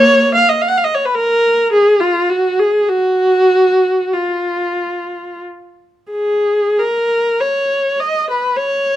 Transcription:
0.00 0.30 A#3 medium
0.00 0.34 C#5 medium
0.35 0.49 F5 medium
0.49 0.60 D#5 medium
0.62 0.70 F5 medium
0.68 0.77 F#5 medium
0.78 0.85 F5 medium
0.85 0.94 D#5 medium
0.95 1.05 C#5 medium
1.06 1.16 B4 medium
1.15 1.71 A#4 medium
1.73 2.00 G#4 medium
2.01 2.30 F4 medium
2.30 2.59 F#4 medium
2.60 2.89 G#4 medium
2.89 4.12 F#4 medium
4.13 5.41 F4 medium
6.11 6.77 G#4 medium
6.80 7.41 A#4 medium
7.41 8.00 C#5 medium
8.00 8.30 D#5 medium
8.31 8.58 B4 medium
8.56 8.96 C#5 medium

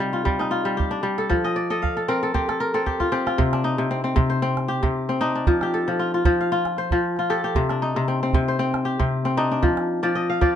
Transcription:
0.00 1.35 C3 medium
0.00 0.24 G3 medium
0.00 0.75 C4 medium
0.00 0.39 D#4 medium
0.00 0.13 F4 medium
0.00 0.77 G4 medium
0.00 0.67 A4 medium
0.13 0.50 F4 medium
0.13 calabash click soft
0.25 0.64 G3 medium
0.25 calabash thump medium
0.39 0.97 D#4 medium
0.39 calabash click soft
0.51 2.02 F4 medium
0.51 calabash click soft
0.65 1.02 G3 medium
0.65 calabash click soft
0.77 2.18 G4 medium
0.77 calabash thump medium
0.91 1.50 D4 medium
1.03 1.35 G3 medium
1.18 1.70 A4 medium
1.30 3.43 F3 medium
1.30 calabash thump medium
1.30 calabash click soft
1.44 1.70 D#5 medium
1.44 calabash click soft
1.56 2.67 D5 medium
1.56 calabash click soft
1.70 1.96 A4 medium
1.70 2.78 D#5 medium
1.82 2.82 F5 medium
1.82 calabash thump medium
1.82 calabash click soft
1.97 2.22 A4 medium
1.97 calabash click soft
2.08 2.34 C4 medium
2.08 2.55 A#4 medium
2.08 calabash click soft
2.23 2.48 A4 medium
2.34 2.74 C4 medium
2.34 2.86 G4 medium
2.34 calabash thump medium
2.49 2.74 A4 medium
2.49 calabash click soft
2.60 3.88 A#4 medium
2.74 3.11 C4 medium
2.74 4.06 A4 medium
2.86 3.12 G4 medium
2.86 calabash thump soft
3.00 3.26 F4 medium
3.00 calabash thump soft
3.12 3.90 C4 medium
3.12 4.53 G4 medium
3.12 calabash click soft
3.27 4.78 F4 medium
3.27 calabash click soft
3.38 3.77 C3 medium
3.38 calabash thump medium
3.53 5.20 D4 medium
3.53 calabash click medium
3.64 5.20 D#4 medium
3.78 4.15 C3 medium
3.78 calabash click soft
3.91 4.03 C4 medium
4.04 4.42 C4 medium
4.16 4.81 C3 medium
4.16 calabash thump medium
4.30 5.48 C5 medium
4.30 calabash click soft
4.42 5.08 C4 medium
4.57 calabash click medium
4.68 5.62 G4 medium
4.68 calabash click soft
4.83 5.52 C3 medium
4.83 calabash thump soft
5.09 6.89 C4 medium
5.09 calabash click soft
5.21 5.35 D4 medium
5.21 6.83 D#4 medium
5.35 7.03 D4 medium
5.47 5.87 F3 medium
5.47 calabash thump medium
5.61 7.04 G4 medium
5.61 calabash click soft
5.74 7.06 A4 medium
5.87 6.24 F3 medium
5.87 calabash click soft
5.99 6.14 F4 medium
6.14 6.51 F4 medium
6.25 6.91 F3 medium
6.25 calabash thump medium
6.39 7.40 F5 medium
6.39 calabash click soft
6.52 7.18 F4 medium
6.65 calabash click soft
6.77 7.97 C5 medium
6.77 calabash click soft
6.91 7.60 F3 medium
6.91 calabash thump soft
7.17 8.70 F4 medium
7.17 calabash click soft
7.30 7.44 G4 medium
7.30 8.62 A4 medium
7.44 8.85 G4 medium
7.55 7.95 C3 medium
7.55 calabash thump medium
7.69 9.37 D4 medium
7.69 calabash click soft
7.82 9.37 D#4 medium
7.96 8.33 C3 medium
7.96 calabash click soft
8.08 8.22 C4 medium
8.23 8.59 C4 medium
8.33 8.98 C3 medium
8.33 calabash thump medium
8.48 9.67 C5 medium
8.48 calabash click soft
8.59 9.25 C4 medium
8.74 calabash click soft
8.85 10.26 G4 medium
8.85 calabash click soft
8.99 9.68 C3 medium
8.99 calabash thump soft
9.25 10.55 C4 medium
9.25 calabash click soft
9.37 9.51 D4 medium
9.37 10.09 D#4 medium
9.52 10.21 D4 medium
9.63 10.02 F3 medium
9.63 calabash thump medium
9.63 calabash click soft
9.77 calabash click medium
10.03 10.40 F3 medium
10.03 10.41 D5 medium
10.03 calabash click soft
10.15 10.48 D#5 medium
10.15 calabash click soft
10.29 10.55 F5 medium
10.29 calabash click soft
10.41 10.55 F3 medium
10.41 10.55 D5 medium
10.41 calabash thump medium

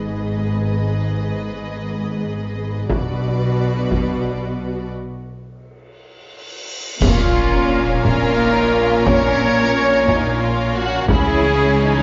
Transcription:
0.00 2.86 G#1 soft
0.00 2.86 G#2 soft
0.00 2.86 B3 soft
0.00 2.86 D#4 soft
0.00 2.85 G#4 soft
0.00 2.85 B4 soft
0.00 2.86 D#5 soft
0.00 impact soft
2.88 4.95 B1 medium
2.88 4.94 B2 medium
2.88 4.91 B3 medium
2.88 4.91 D4 medium
2.88 4.91 F#4 medium
2.88 4.91 B4 medium
2.88 4.90 D5 medium
2.88 taiko medium
3.91 taiko medium
4.94 cymbal swell soft
7.00 11.05 A#1 medium
7.00 11.05 A#2 medium
7.00 11.04 A#3 medium
7.00 11.04 C#4 medium
7.00 11.05 C#4 medium
7.00 8.00 C#4 medium
7.00 8.00 F4 medium
7.00 8.00 F4 loud
7.00 11.05 A#4 medium
7.00 11.05 C#5 medium
7.00 11.05 F5 medium
7.00 concert bass drum medium
7.00 taiko loud
7.00 crash medium
7.00 sub drop medium
8.03 8.36 C#4 medium
8.03 9.04 F4 loud
8.03 9.04 A#4 loud
8.03 9.06 A#4 medium
8.03 9.04 A#4 medium
8.03 taiko medium
8.37 8.71 D#4 medium
8.72 9.06 F4 medium
9.05 10.07 C#4 medium
9.05 10.74 A#4 loud
9.05 10.75 C#5 loud
9.05 10.71 C#5 medium
9.05 10.72 C#5 medium
9.05 taiko loud
10.08 10.41 D#4 medium
10.08 taiko medium
10.41 10.75 F4 medium
10.76 11.09 F#4 medium
11.07 12.03 C#2 medium
11.07 12.03 C#3 medium
11.07 12.03 E3 medium
11.07 12.03 G#3 medium
11.07 12.03 C#4 medium
11.07 12.03 E4 medium
11.07 11.43 E4 medium
11.07 12.03 G#4 medium
11.07 12.03 G#4 loud
11.07 12.03 G#4 medium
11.07 12.03 C#5 medium
11.07 taiko loud
11.44 11.78 C#4 medium
11.78 12.03 D#4 medium

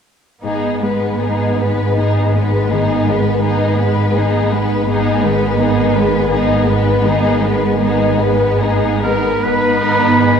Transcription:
0.43 4.84 G#1 soft
0.43 4.84 G#2 soft
0.43 4.33 G#2 soft
0.43 0.79 B3 soft
0.43 0.79 D#4 soft
0.43 0.79 G#4 soft
0.82 1.20 G#3 soft
0.82 2.34 G#3 soft
0.82 1.21 B3 soft
0.82 1.21 B4 soft
1.19 1.58 B3 soft
1.19 1.60 D#4 soft
1.19 1.59 G#4 soft
1.19 3.43 B4 soft
1.57 1.96 G#3 soft
1.57 1.96 B3 soft
1.57 3.78 G#4 soft
1.57 1.97 B4 soft
1.96 2.31 B3 soft
1.96 4.15 D#4 soft
1.96 2.32 D#4 soft
1.96 2.32 G#4 soft
2.35 2.71 G#3 soft
2.35 3.07 G#3 soft
2.35 2.73 B3 soft
2.35 2.72 B4 soft
2.70 5.23 D#3 soft
2.70 3.07 B3 soft
2.70 3.08 D#4 soft
2.70 3.09 G#4 soft
3.07 3.43 G#3 soft
3.07 4.51 G#3 soft
3.07 3.44 B3 soft
3.07 3.45 B4 soft
3.42 3.76 B3 soft
3.42 3.77 D#4 soft
3.42 3.78 G#4 soft
3.42 5.59 B4 soft
3.79 4.15 G#3 soft
3.79 4.16 B3 soft
3.79 5.94 G#4 soft
3.79 4.15 B4 soft
4.14 4.51 B3 soft
4.14 6.31 D#4 soft
4.14 4.52 D#4 soft
4.14 4.52 G#4 soft
4.50 4.87 G#3 soft
4.50 6.66 G#3 soft
4.50 4.89 B3 soft
4.50 4.89 B4 soft
4.86 9.20 G#1 soft
4.86 8.77 G#2 soft
4.86 9.20 G#2 soft
4.86 5.21 B3 medium
4.86 5.23 D#4 soft
4.91 5.24 G#4 soft
5.23 7.03 D#3 soft
5.23 5.60 G#3 soft
5.23 5.61 B3 soft
5.23 5.61 B4 soft
5.59 5.96 B3 soft
5.59 5.97 D#4 soft
5.59 5.97 G#4 soft
5.59 7.79 B4 soft
5.95 6.32 G#3 soft
5.95 6.33 B3 soft
5.95 8.18 G#4 soft
5.95 6.32 B4 soft
6.30 6.65 B3 soft
6.30 8.61 D#4 soft
6.30 6.67 D#4 soft
6.30 6.65 G#4 soft
6.67 7.41 G#3 soft
6.67 7.04 G#3 soft
6.67 7.06 B3 soft
6.67 7.04 B4 soft
7.04 9.48 D#3 soft
7.04 7.41 B3 soft
7.04 7.42 D#4 soft
7.04 7.42 G#4 soft
7.41 7.80 G#3 soft
7.41 9.03 G#3 soft
7.41 7.81 B3 soft
7.41 7.80 B4 soft
7.79 8.17 B3 soft
7.79 8.17 D#4 soft
7.79 8.18 G#4 soft
7.79 10.40 B4 soft
8.19 8.62 G#3 soft
8.19 8.61 B3 soft
8.19 10.40 G#4 soft
8.19 8.61 B4 soft
8.60 9.04 B3 soft
8.60 9.04 D#4 soft
8.60 10.20 D#4 soft
8.60 9.04 G#4 soft
9.03 9.45 G#3 soft
9.03 9.81 G#3 soft
9.03 9.45 B3 soft
9.03 9.45 A#4 soft
9.03 9.42 A#4 soft
9.03 9.43 B4 soft
9.44 10.40 G#1 soft
9.44 10.40 G#2 soft
9.44 10.40 B3 soft
9.44 10.40 D#4 soft
9.44 10.40 B4 medium
9.44 9.80 B4 soft
9.44 10.40 B4 soft
9.82 10.40 G#3 soft
9.82 10.21 A#4 soft
10.20 10.40 D#4 soft
10.20 10.40 G#4 soft

